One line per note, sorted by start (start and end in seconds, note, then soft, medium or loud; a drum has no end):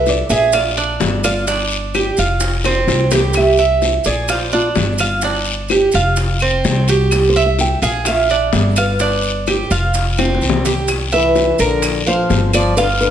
0.00 0.24 C2 medium
0.00 0.29 E5 medium
0.06 0.29 D5 medium
0.06 high bongo medium
0.06 short guiro medium
0.06 maracas soft
0.29 0.96 A#1 medium
0.29 0.53 G#4 medium
0.29 0.53 E5 loud
0.29 high bongo soft
0.29 short guiro medium
0.29 maracas medium
0.52 0.76 F4 medium
0.52 1.20 D5 medium
0.52 high bongo medium
0.52 long guiro medium
0.52 claves medium
0.52 maracas medium
0.77 1.23 D4 medium
0.77 high bongo soft
0.77 maracas soft
1.00 2.11 G1 medium
1.00 high bongo medium
1.00 low bongo medium
1.00 short guiro medium
1.00 maracas soft
1.24 1.47 F4 medium
1.24 1.91 D5 medium
1.24 high bongo soft
1.24 short guiro medium
1.24 claves medium
1.24 maracas medium
1.47 1.93 D4 medium
1.47 high bongo medium
1.47 long guiro medium
1.47 maracas medium
1.71 maracas soft
1.94 2.17 G4 medium
1.94 high bongo medium
1.94 short guiro medium
1.94 claves medium
1.94 maracas soft
2.17 2.84 F1 medium
2.17 2.64 F4 medium
2.17 high bongo soft
2.17 short guiro medium
2.17 maracas medium
2.40 high bongo medium
2.40 long guiro medium
2.40 maracas medium
2.64 3.11 C4 medium
2.64 high bongo medium
2.64 claves medium
2.64 maracas soft
2.87 3.99 C2 medium
2.87 high bongo medium
2.87 short guiro medium
2.87 maracas soft
3.11 3.58 G4 medium
3.11 low bongo medium
3.11 short guiro medium
3.11 maracas medium
3.33 4.03 E5 medium
3.33 high bongo medium
3.33 long guiro medium
3.33 claves medium
3.33 maracas medium
3.57 4.04 E5 medium
3.57 maracas soft
3.82 high bongo medium
3.82 short guiro medium
3.82 maracas soft
4.04 4.72 A#1 medium
4.04 4.29 G#4 medium
4.04 4.31 D5 medium
4.04 high bongo soft
4.04 short guiro medium
4.04 maracas medium
4.28 4.52 F4 medium
4.28 4.53 C5 medium
4.28 high bongo medium
4.28 long guiro medium
4.28 claves medium
4.28 maracas medium
4.52 4.98 D4 medium
4.52 4.68 F4 medium
4.52 high bongo soft
4.52 maracas soft
4.75 5.88 G1 medium
4.75 high bongo medium
4.75 low bongo medium
4.75 short guiro medium
4.75 maracas soft
4.98 5.23 F4 medium
4.98 high bongo soft
4.98 short guiro medium
4.98 claves medium
4.98 maracas medium
5.21 5.69 D4 medium
5.21 high bongo medium
5.21 long guiro medium
5.21 maracas medium
5.45 maracas soft
5.68 5.94 G4 medium
5.68 high bongo medium
5.68 short guiro medium
5.68 claves medium
5.68 maracas soft
5.92 6.61 F1 medium
5.92 6.40 F4 medium
5.92 high bongo soft
5.92 short guiro medium
5.92 maracas medium
6.16 high bongo medium
6.16 long guiro medium
6.16 maracas medium
6.39 6.87 C4 medium
6.39 high bongo soft
6.39 claves medium
6.39 maracas soft
6.64 7.76 C2 medium
6.64 high bongo medium
6.64 low bongo medium
6.64 short guiro medium
6.64 maracas soft
6.88 7.11 F#4 medium
6.88 7.34 G4 medium
6.88 high bongo soft
6.88 short guiro medium
6.88 maracas medium
7.11 7.28 G4 medium
7.11 high bongo medium
7.11 long guiro medium
7.11 claves medium
7.11 maracas medium
7.29 7.44 C5 medium
7.36 7.81 E5 medium
7.36 maracas soft
7.46 7.60 E5 medium
7.58 7.82 G5 loud
7.58 high bongo medium
7.58 short guiro medium
7.58 maracas soft
7.82 8.49 A#1 medium
7.82 8.05 G#4 medium
7.82 8.05 F5 loud
7.82 high bongo soft
7.82 short guiro medium
7.82 maracas medium
8.05 8.29 F4 medium
8.05 8.74 E5 medium
8.05 high bongo medium
8.05 long guiro medium
8.05 claves medium
8.05 maracas medium
8.29 8.76 D4 medium
8.29 high bongo soft
8.29 maracas soft
8.53 9.64 G1 medium
8.53 high bongo medium
8.53 low bongo medium
8.53 short guiro medium
8.53 maracas soft
8.76 9.00 F4 medium
8.76 9.91 B4 medium
8.76 high bongo soft
8.76 short guiro medium
8.76 claves medium
8.76 maracas medium
8.99 9.46 D4 medium
8.99 high bongo medium
8.99 long guiro medium
8.99 maracas medium
9.23 maracas soft
9.46 9.70 G4 medium
9.46 high bongo medium
9.46 short guiro medium
9.46 claves medium
9.46 maracas soft
9.71 10.37 F1 medium
9.71 10.17 F4 medium
9.71 high bongo soft
9.71 short guiro medium
9.71 maracas medium
9.94 high bongo medium
9.94 long guiro medium
9.94 maracas medium
10.18 10.64 C4 medium
10.18 high bongo medium
10.18 claves medium
10.18 maracas soft
10.34 high bongo medium
10.41 11.53 C2 medium
10.41 short guiro medium
10.41 maracas soft
10.49 low bongo loud
10.65 10.88 G4 medium
10.65 low bongo medium
10.65 short guiro medium
10.65 maracas medium
10.88 high bongo medium
10.88 long guiro medium
10.88 claves medium
10.88 maracas medium
11.12 11.57 E3 medium
11.12 11.57 B4 medium
11.12 11.58 E5 medium
11.12 high bongo soft
11.12 maracas soft
11.35 high bongo medium
11.35 short guiro medium
11.35 maracas soft
11.59 12.26 A#1 medium
11.59 12.04 D3 medium
11.59 12.05 A#4 medium
11.59 12.08 A#4 medium
11.59 high bongo soft
11.59 short guiro medium
11.59 maracas medium
11.82 high bongo medium
11.82 long guiro medium
11.82 claves medium
11.82 maracas medium
12.06 12.50 F3 medium
12.06 12.51 C5 loud
12.06 12.52 F5 medium
12.06 high bongo soft
12.06 maracas soft
12.30 13.11 G1 medium
12.30 high bongo soft
12.30 low bongo medium
12.30 short guiro medium
12.30 maracas soft
12.53 12.75 F3 medium
12.53 12.77 D5 medium
12.53 short guiro medium
12.53 claves medium
12.53 maracas medium
12.77 12.88 D3 medium
12.77 13.11 F4 medium
12.77 12.83 B4 loud
12.77 high bongo medium
12.77 long guiro medium
12.77 maracas medium
13.01 13.11 D3 medium
13.01 13.11 B4 medium
13.01 high bongo soft
13.01 maracas soft